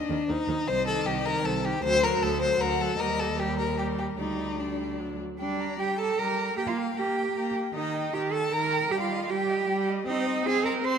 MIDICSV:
0, 0, Header, 1, 5, 480
1, 0, Start_track
1, 0, Key_signature, -2, "minor"
1, 0, Tempo, 385852
1, 841, Time_signature, 3, 2, 24, 8
1, 3722, Tempo, 399202
1, 7562, Tempo, 387847
1, 13498, End_track
2, 0, Start_track
2, 0, Title_t, "Violin"
2, 0, Program_c, 0, 40
2, 0, Note_on_c, 0, 75, 66
2, 346, Note_off_c, 0, 75, 0
2, 352, Note_on_c, 0, 72, 64
2, 827, Note_off_c, 0, 72, 0
2, 842, Note_on_c, 0, 75, 80
2, 1782, Note_off_c, 0, 75, 0
2, 1800, Note_on_c, 0, 72, 73
2, 2738, Note_off_c, 0, 72, 0
2, 2749, Note_on_c, 0, 69, 66
2, 3222, Note_off_c, 0, 69, 0
2, 3229, Note_on_c, 0, 78, 81
2, 3703, Note_off_c, 0, 78, 0
2, 3711, Note_on_c, 0, 75, 76
2, 4182, Note_on_c, 0, 70, 66
2, 4200, Note_off_c, 0, 75, 0
2, 5147, Note_on_c, 0, 74, 52
2, 5165, Note_off_c, 0, 70, 0
2, 6369, Note_off_c, 0, 74, 0
2, 6610, Note_on_c, 0, 79, 52
2, 6853, Note_on_c, 0, 82, 47
2, 6871, Note_off_c, 0, 79, 0
2, 7096, Note_on_c, 0, 79, 50
2, 7114, Note_off_c, 0, 82, 0
2, 7325, Note_on_c, 0, 82, 51
2, 7343, Note_off_c, 0, 79, 0
2, 7562, Note_off_c, 0, 82, 0
2, 7568, Note_on_c, 0, 79, 44
2, 7801, Note_on_c, 0, 82, 45
2, 7819, Note_off_c, 0, 79, 0
2, 8040, Note_off_c, 0, 82, 0
2, 8048, Note_on_c, 0, 82, 50
2, 8295, Note_on_c, 0, 79, 49
2, 8314, Note_off_c, 0, 82, 0
2, 8540, Note_on_c, 0, 82, 49
2, 8558, Note_off_c, 0, 79, 0
2, 8786, Note_on_c, 0, 79, 46
2, 8805, Note_off_c, 0, 82, 0
2, 9017, Note_off_c, 0, 79, 0
2, 9024, Note_on_c, 0, 82, 48
2, 9266, Note_on_c, 0, 79, 47
2, 9285, Note_off_c, 0, 82, 0
2, 9493, Note_off_c, 0, 79, 0
2, 9501, Note_on_c, 0, 82, 55
2, 9746, Note_on_c, 0, 79, 57
2, 9765, Note_off_c, 0, 82, 0
2, 9969, Note_on_c, 0, 82, 52
2, 9988, Note_off_c, 0, 79, 0
2, 10223, Note_on_c, 0, 79, 54
2, 10241, Note_off_c, 0, 82, 0
2, 10451, Note_off_c, 0, 79, 0
2, 10459, Note_on_c, 0, 82, 49
2, 10706, Note_on_c, 0, 79, 48
2, 10724, Note_off_c, 0, 82, 0
2, 10939, Note_off_c, 0, 79, 0
2, 10948, Note_on_c, 0, 79, 53
2, 11184, Note_on_c, 0, 75, 54
2, 11202, Note_off_c, 0, 79, 0
2, 11425, Note_on_c, 0, 79, 51
2, 11444, Note_off_c, 0, 75, 0
2, 11665, Note_on_c, 0, 75, 56
2, 11683, Note_off_c, 0, 79, 0
2, 11898, Note_off_c, 0, 75, 0
2, 11909, Note_on_c, 0, 79, 59
2, 12149, Note_on_c, 0, 75, 53
2, 12168, Note_off_c, 0, 79, 0
2, 12379, Note_off_c, 0, 75, 0
2, 12388, Note_on_c, 0, 72, 60
2, 12611, Note_on_c, 0, 75, 63
2, 12629, Note_off_c, 0, 72, 0
2, 12845, Note_on_c, 0, 72, 60
2, 12864, Note_off_c, 0, 75, 0
2, 13079, Note_on_c, 0, 75, 68
2, 13097, Note_off_c, 0, 72, 0
2, 13318, Note_off_c, 0, 75, 0
2, 13326, Note_on_c, 0, 72, 59
2, 13498, Note_off_c, 0, 72, 0
2, 13498, End_track
3, 0, Start_track
3, 0, Title_t, "Violin"
3, 0, Program_c, 1, 40
3, 2, Note_on_c, 1, 62, 78
3, 365, Note_on_c, 1, 63, 91
3, 384, Note_off_c, 1, 62, 0
3, 842, Note_on_c, 1, 72, 102
3, 861, Note_off_c, 1, 63, 0
3, 1076, Note_off_c, 1, 72, 0
3, 1084, Note_on_c, 1, 69, 88
3, 1322, Note_on_c, 1, 67, 83
3, 1341, Note_off_c, 1, 69, 0
3, 1559, Note_on_c, 1, 70, 99
3, 1578, Note_off_c, 1, 67, 0
3, 1808, Note_on_c, 1, 69, 85
3, 1827, Note_off_c, 1, 70, 0
3, 2052, Note_on_c, 1, 67, 91
3, 2070, Note_off_c, 1, 69, 0
3, 2281, Note_off_c, 1, 67, 0
3, 2288, Note_on_c, 1, 72, 124
3, 2533, Note_on_c, 1, 70, 99
3, 2552, Note_off_c, 1, 72, 0
3, 2770, Note_on_c, 1, 69, 92
3, 2788, Note_off_c, 1, 70, 0
3, 3004, Note_off_c, 1, 69, 0
3, 3010, Note_on_c, 1, 72, 100
3, 3246, Note_on_c, 1, 70, 84
3, 3264, Note_off_c, 1, 72, 0
3, 3495, Note_on_c, 1, 69, 84
3, 3514, Note_off_c, 1, 70, 0
3, 3730, Note_on_c, 1, 70, 98
3, 3748, Note_off_c, 1, 69, 0
3, 3964, Note_on_c, 1, 69, 85
3, 3982, Note_off_c, 1, 70, 0
3, 4208, Note_on_c, 1, 67, 84
3, 4226, Note_off_c, 1, 69, 0
3, 4432, Note_off_c, 1, 67, 0
3, 4439, Note_on_c, 1, 70, 73
3, 4668, Note_off_c, 1, 70, 0
3, 4673, Note_on_c, 1, 67, 64
3, 4768, Note_off_c, 1, 67, 0
3, 4918, Note_on_c, 1, 67, 64
3, 5014, Note_off_c, 1, 67, 0
3, 5159, Note_on_c, 1, 63, 71
3, 5651, Note_on_c, 1, 62, 52
3, 5669, Note_off_c, 1, 63, 0
3, 6376, Note_off_c, 1, 62, 0
3, 6618, Note_on_c, 1, 74, 61
3, 7083, Note_on_c, 1, 79, 70
3, 7101, Note_off_c, 1, 74, 0
3, 7317, Note_on_c, 1, 81, 72
3, 7335, Note_off_c, 1, 79, 0
3, 7556, Note_on_c, 1, 82, 64
3, 7574, Note_off_c, 1, 81, 0
3, 8032, Note_off_c, 1, 82, 0
3, 8040, Note_on_c, 1, 79, 69
3, 8165, Note_on_c, 1, 77, 62
3, 8184, Note_off_c, 1, 79, 0
3, 8530, Note_on_c, 1, 79, 61
3, 8548, Note_off_c, 1, 77, 0
3, 9254, Note_off_c, 1, 79, 0
3, 9500, Note_on_c, 1, 75, 64
3, 9945, Note_off_c, 1, 75, 0
3, 9985, Note_on_c, 1, 79, 67
3, 10079, Note_off_c, 1, 79, 0
3, 10219, Note_on_c, 1, 81, 82
3, 10462, Note_on_c, 1, 82, 75
3, 10480, Note_off_c, 1, 81, 0
3, 10925, Note_off_c, 1, 82, 0
3, 10932, Note_on_c, 1, 79, 79
3, 11039, Note_off_c, 1, 79, 0
3, 11047, Note_on_c, 1, 77, 67
3, 11412, Note_on_c, 1, 79, 66
3, 11431, Note_off_c, 1, 77, 0
3, 12132, Note_off_c, 1, 79, 0
3, 12367, Note_on_c, 1, 75, 76
3, 12813, Note_off_c, 1, 75, 0
3, 12851, Note_on_c, 1, 80, 82
3, 13083, Note_off_c, 1, 80, 0
3, 13095, Note_on_c, 1, 82, 74
3, 13189, Note_off_c, 1, 82, 0
3, 13334, Note_on_c, 1, 84, 90
3, 13498, Note_off_c, 1, 84, 0
3, 13498, End_track
4, 0, Start_track
4, 0, Title_t, "Cello"
4, 0, Program_c, 2, 42
4, 122, Note_on_c, 2, 39, 59
4, 218, Note_off_c, 2, 39, 0
4, 360, Note_on_c, 2, 39, 73
4, 456, Note_off_c, 2, 39, 0
4, 597, Note_on_c, 2, 39, 56
4, 694, Note_off_c, 2, 39, 0
4, 839, Note_on_c, 2, 36, 77
4, 1264, Note_off_c, 2, 36, 0
4, 1318, Note_on_c, 2, 36, 75
4, 1742, Note_off_c, 2, 36, 0
4, 1797, Note_on_c, 2, 36, 73
4, 2221, Note_off_c, 2, 36, 0
4, 2274, Note_on_c, 2, 38, 89
4, 2698, Note_off_c, 2, 38, 0
4, 2755, Note_on_c, 2, 38, 76
4, 3181, Note_off_c, 2, 38, 0
4, 3239, Note_on_c, 2, 38, 74
4, 3666, Note_off_c, 2, 38, 0
4, 3724, Note_on_c, 2, 39, 76
4, 5104, Note_off_c, 2, 39, 0
4, 5152, Note_on_c, 2, 38, 52
4, 6347, Note_off_c, 2, 38, 0
4, 6609, Note_on_c, 2, 62, 82
4, 7054, Note_off_c, 2, 62, 0
4, 7090, Note_on_c, 2, 67, 85
4, 7322, Note_off_c, 2, 67, 0
4, 7329, Note_on_c, 2, 69, 80
4, 7560, Note_on_c, 2, 70, 88
4, 7579, Note_off_c, 2, 69, 0
4, 8037, Note_off_c, 2, 70, 0
4, 8044, Note_on_c, 2, 67, 89
4, 8093, Note_off_c, 2, 67, 0
4, 8162, Note_on_c, 2, 65, 61
4, 8261, Note_off_c, 2, 65, 0
4, 8532, Note_on_c, 2, 67, 82
4, 9240, Note_off_c, 2, 67, 0
4, 9492, Note_on_c, 2, 63, 82
4, 9973, Note_on_c, 2, 67, 91
4, 9991, Note_off_c, 2, 63, 0
4, 10213, Note_on_c, 2, 69, 81
4, 10232, Note_off_c, 2, 67, 0
4, 10454, Note_on_c, 2, 70, 100
4, 10473, Note_off_c, 2, 69, 0
4, 10937, Note_on_c, 2, 67, 92
4, 10956, Note_off_c, 2, 70, 0
4, 11052, Note_off_c, 2, 67, 0
4, 11059, Note_on_c, 2, 65, 75
4, 11418, Note_on_c, 2, 67, 93
4, 11436, Note_off_c, 2, 65, 0
4, 12134, Note_off_c, 2, 67, 0
4, 12376, Note_on_c, 2, 63, 95
4, 12851, Note_on_c, 2, 68, 114
4, 12869, Note_off_c, 2, 63, 0
4, 13090, Note_on_c, 2, 70, 84
4, 13109, Note_off_c, 2, 68, 0
4, 13325, Note_on_c, 2, 72, 103
4, 13343, Note_off_c, 2, 70, 0
4, 13498, Note_off_c, 2, 72, 0
4, 13498, End_track
5, 0, Start_track
5, 0, Title_t, "Viola"
5, 0, Program_c, 3, 41
5, 125, Note_on_c, 3, 51, 51
5, 220, Note_off_c, 3, 51, 0
5, 362, Note_on_c, 3, 51, 53
5, 458, Note_off_c, 3, 51, 0
5, 606, Note_on_c, 3, 51, 52
5, 701, Note_off_c, 3, 51, 0
5, 1078, Note_on_c, 3, 51, 54
5, 1550, Note_off_c, 3, 51, 0
5, 1564, Note_on_c, 3, 51, 63
5, 2027, Note_off_c, 3, 51, 0
5, 2035, Note_on_c, 3, 51, 55
5, 2266, Note_off_c, 3, 51, 0
5, 2274, Note_on_c, 3, 54, 62
5, 2506, Note_off_c, 3, 54, 0
5, 2513, Note_on_c, 3, 54, 64
5, 2986, Note_off_c, 3, 54, 0
5, 3002, Note_on_c, 3, 54, 54
5, 3471, Note_off_c, 3, 54, 0
5, 3478, Note_on_c, 3, 54, 55
5, 3717, Note_off_c, 3, 54, 0
5, 3726, Note_on_c, 3, 55, 58
5, 4162, Note_off_c, 3, 55, 0
5, 4192, Note_on_c, 3, 55, 57
5, 4654, Note_off_c, 3, 55, 0
5, 4661, Note_on_c, 3, 55, 51
5, 5139, Note_off_c, 3, 55, 0
5, 5157, Note_on_c, 3, 55, 46
5, 5634, Note_off_c, 3, 55, 0
5, 5648, Note_on_c, 3, 55, 47
5, 6132, Note_on_c, 3, 54, 39
5, 6150, Note_off_c, 3, 55, 0
5, 6373, Note_off_c, 3, 54, 0
5, 6612, Note_on_c, 3, 55, 61
5, 7032, Note_off_c, 3, 55, 0
5, 7087, Note_on_c, 3, 55, 58
5, 7506, Note_off_c, 3, 55, 0
5, 7562, Note_on_c, 3, 55, 61
5, 7990, Note_off_c, 3, 55, 0
5, 8056, Note_on_c, 3, 58, 72
5, 8480, Note_off_c, 3, 58, 0
5, 8536, Note_on_c, 3, 58, 53
5, 8961, Note_off_c, 3, 58, 0
5, 9015, Note_on_c, 3, 58, 58
5, 9438, Note_off_c, 3, 58, 0
5, 9499, Note_on_c, 3, 51, 64
5, 9921, Note_off_c, 3, 51, 0
5, 9969, Note_on_c, 3, 51, 59
5, 10394, Note_off_c, 3, 51, 0
5, 10455, Note_on_c, 3, 51, 62
5, 10876, Note_off_c, 3, 51, 0
5, 10934, Note_on_c, 3, 55, 68
5, 11355, Note_off_c, 3, 55, 0
5, 11410, Note_on_c, 3, 55, 73
5, 11834, Note_off_c, 3, 55, 0
5, 11901, Note_on_c, 3, 55, 76
5, 12318, Note_off_c, 3, 55, 0
5, 12372, Note_on_c, 3, 60, 77
5, 12792, Note_off_c, 3, 60, 0
5, 12853, Note_on_c, 3, 60, 77
5, 13272, Note_off_c, 3, 60, 0
5, 13328, Note_on_c, 3, 60, 81
5, 13498, Note_off_c, 3, 60, 0
5, 13498, End_track
0, 0, End_of_file